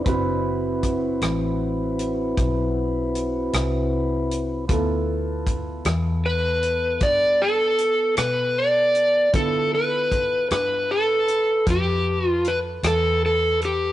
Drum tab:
HH |x-xx-xx-xx-x|x-xx-xx-xx-x|x-xx-xx-xx-x|
SD |---r-----r--|---r-----r--|---r-----r--|
BD |o-o---o-----|o-o---o-----|o-o---o-----|